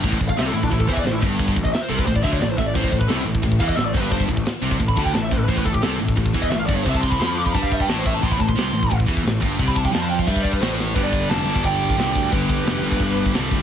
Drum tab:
CC |x-x-x-x-x-x-x-x-|x-x-x-x-x-x-x-x-|x-x-x-x-x-x-x-x-|x-x-x-x-x-x-x-x-|
SD |----o-------o---|----o-------o---|----o-------o---|----o-------o---|
BD |oooo---ooooo--o-|oooo---ooooo--o-|oooo---ooooo--o-|oooo---ooooo--o-|

CC |x-x-x-x-x-x-x-x-|x-x-x-x-x-x-x-x-|x-x-x-x-x-x-x-x-|x-x-x-x-x-x-x---|
SD |----o-------o---|----o-------o---|----o-------o---|----o-------o-o-|
BD |oooo---ooooo--o-|oooo---ooooo--o-|oooo---ooooo--o-|oooo---ooooo----|

CC |x-x-x-x-x-x-x-x-|x-x-x-x-x-x-x-x-|
SD |----o-------o---|----o-------o---|
BD |o-o----oo--o--o-|o-o----oo--o--o-|